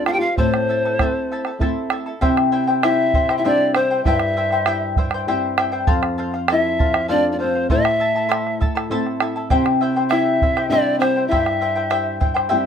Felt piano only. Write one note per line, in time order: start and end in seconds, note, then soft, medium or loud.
0.06 0.13 F4 medium
0.13 0.20 G4 medium
0.19 0.36 F4 medium
0.37 1.56 C4 medium
2.84 3.34 E4 medium
3.39 3.45 E4 medium
3.46 3.76 D4 medium
3.75 4.03 C4 medium
4.05 4.93 E4 medium
6.53 7.07 E4 medium
7.12 7.31 D4 medium
7.33 7.39 D4 medium
7.42 7.71 C4 medium
7.71 8.57 E4 medium
10.12 10.68 E4 loud
10.69 10.98 D4 medium
10.99 11.28 C4 medium
11.28 12.16 E4 medium